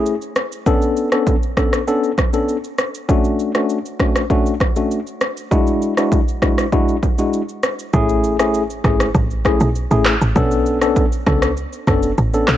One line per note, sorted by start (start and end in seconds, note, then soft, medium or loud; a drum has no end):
0.00 0.14 A3 medium
0.00 0.14 C#4 medium
0.00 0.14 E4 medium
0.00 0.14 G#4 medium
0.06 shaker medium
0.22 shaker soft
0.36 cross-stick medium
0.36 shaker medium
0.52 shaker medium
0.66 1.09 B3 medium
0.66 1.09 C#4 medium
0.66 1.09 D4 medium
0.66 1.09 A4 loud
0.66 kick loud
0.66 shaker medium
0.82 shaker medium
0.97 shaker medium
1.12 1.35 B3 medium
1.12 1.35 C#4 medium
1.12 1.35 D4 medium
1.12 1.35 A4 medium
1.12 cross-stick medium
1.12 shaker medium
1.27 kick loud
1.27 shaker medium
1.43 shaker medium
1.57 1.80 B3 medium
1.57 1.80 C#4 medium
1.57 1.80 D4 medium
1.57 1.80 A4 medium
1.57 kick loud
1.57 cross-stick medium
1.57 shaker soft
1.73 cross-stick medium
1.73 shaker loud
1.87 2.10 B3 medium
1.87 2.11 C#4 medium
1.87 2.11 D4 medium
1.87 2.11 A4 medium
1.87 shaker medium
2.04 shaker soft
2.18 kick medium
2.18 cross-stick medium
2.18 shaker soft
2.33 2.56 B3 medium
2.33 2.56 C#4 medium
2.33 2.56 D4 medium
2.33 2.56 A4 medium
2.33 shaker medium
2.49 shaker medium
2.64 shaker soft
2.78 cross-stick medium
2.78 shaker medium
2.95 shaker medium
3.09 3.51 A3 medium
3.09 3.51 C#4 medium
3.09 3.51 D4 medium
3.09 3.51 F#4 loud
3.09 kick loud
3.09 shaker medium
3.24 shaker medium
3.39 shaker medium
3.55 3.77 A3 medium
3.55 3.77 C#4 medium
3.55 3.77 D4 medium
3.55 3.77 F#4 medium
3.55 cross-stick medium
3.55 shaker medium
3.70 shaker medium
3.86 shaker medium
4.00 4.23 A3 medium
4.00 4.23 C#4 medium
4.00 4.23 D4 medium
4.00 4.23 F#4 medium
4.00 kick medium
4.00 cross-stick medium
4.00 shaker medium
4.16 cross-stick medium
4.16 shaker loud
4.30 4.53 A3 medium
4.30 4.53 C#4 medium
4.30 4.53 D4 medium
4.30 4.53 F#4 loud
4.30 kick loud
4.30 shaker medium
4.46 shaker soft
4.60 kick medium
4.60 cross-stick medium
4.60 shaker soft
4.76 4.99 A3 medium
4.76 4.99 C#4 medium
4.76 4.99 D4 medium
4.76 4.99 F#4 medium
4.76 shaker medium
4.91 shaker medium
5.07 shaker soft
5.21 cross-stick medium
5.21 shaker medium
5.37 shaker medium
5.51 5.93 G#3 medium
5.51 5.94 D4 medium
5.51 5.94 E4 medium
5.51 5.94 F#4 loud
5.51 kick loud
5.51 shaker medium
5.67 shaker medium
5.82 shaker medium
5.97 6.20 G#3 medium
5.97 6.20 D4 medium
5.97 6.20 E4 medium
5.97 6.20 F#4 medium
5.97 cross-stick medium
5.97 shaker medium
6.12 kick loud
6.12 shaker medium
6.28 shaker medium
6.42 6.65 G#3 medium
6.42 6.65 D4 medium
6.42 6.65 E4 medium
6.42 6.65 F#4 medium
6.42 kick loud
6.42 cross-stick medium
6.42 shaker medium
6.58 cross-stick medium
6.58 shaker loud
6.72 6.95 G#3 medium
6.72 6.96 D4 medium
6.72 6.96 E4 medium
6.72 6.96 F#4 loud
6.72 kick loud
6.72 shaker medium
6.88 shaker soft
7.03 kick medium
7.03 shaker soft
7.18 7.41 G#3 medium
7.18 7.41 D4 medium
7.18 7.41 E4 medium
7.18 7.41 F#4 medium
7.18 shaker medium
7.33 shaker medium
7.49 shaker soft
7.63 cross-stick medium
7.63 shaker medium
7.79 shaker medium
7.93 8.80 A1 loud
7.93 8.36 A3 medium
7.93 8.36 C#4 medium
7.93 8.36 E4 medium
7.93 8.36 G#4 loud
7.93 kick loud
7.93 shaker medium
8.09 shaker medium
8.24 shaker medium
8.39 8.62 A3 medium
8.39 8.62 C#4 medium
8.39 8.62 E4 medium
8.39 8.62 G#4 medium
8.39 cross-stick medium
8.39 shaker medium
8.54 shaker medium
8.70 shaker medium
8.84 9.10 G#1 medium
8.84 9.07 A3 medium
8.84 9.08 C#4 medium
8.84 9.08 E4 medium
8.84 9.08 G#4 medium
8.84 kick loud
8.84 cross-stick medium
8.84 shaker medium
9.00 cross-stick loud
9.00 shaker loud
9.15 9.54 A1 loud
9.15 kick loud
9.15 shaker medium
9.31 shaker soft
9.45 9.68 A3 medium
9.45 9.68 C#4 medium
9.45 9.68 E4 medium
9.45 9.68 G#4 medium
9.45 kick medium
9.45 cross-stick medium
9.45 shaker soft
9.60 9.87 B1 loud
9.60 shaker loud
9.75 shaker medium
9.91 10.17 A1 medium
9.91 10.13 A3 medium
9.91 10.13 C#4 medium
9.91 10.14 E4 medium
9.91 10.14 G#4 medium
9.91 shaker medium
10.05 cross-stick medium
10.05 clap loud
10.05 shaker medium
10.21 10.34 A1 medium
10.21 shaker loud
10.35 11.23 B1 loud
10.35 10.78 B3 loud
10.35 10.78 C#4 medium
10.35 10.78 D4 medium
10.35 10.78 A4 loud
10.35 kick loud
10.35 shaker medium
10.51 shaker medium
10.66 shaker medium
10.81 11.04 B3 medium
10.81 11.04 C#4 medium
10.81 11.04 D4 medium
10.81 11.05 A4 medium
10.81 cross-stick medium
10.81 shaker medium
10.96 kick loud
10.96 shaker medium
11.12 shaker medium
11.27 11.66 C#2 medium
11.27 11.50 B3 medium
11.27 11.50 C#4 medium
11.27 11.50 D4 medium
11.27 11.50 A4 medium
11.27 kick loud
11.27 cross-stick loud
11.27 shaker medium
11.42 cross-stick loud
11.42 shaker loud
11.57 shaker medium
11.73 shaker soft
11.87 12.13 F#1 loud
11.87 12.10 B3 medium
11.87 12.11 C#4 medium
11.87 12.11 D4 medium
11.87 12.11 A4 medium
11.87 kick medium
11.87 cross-stick medium
11.87 shaker medium
12.03 shaker loud
12.18 12.44 A1 loud
12.18 shaker medium
12.34 12.56 B3 medium
12.34 12.56 C#4 medium
12.34 12.56 D4 medium
12.34 12.56 A4 medium
12.34 shaker medium
12.48 12.57 B1 loud
12.48 cross-stick loud
12.48 clap loud
12.48 shaker medium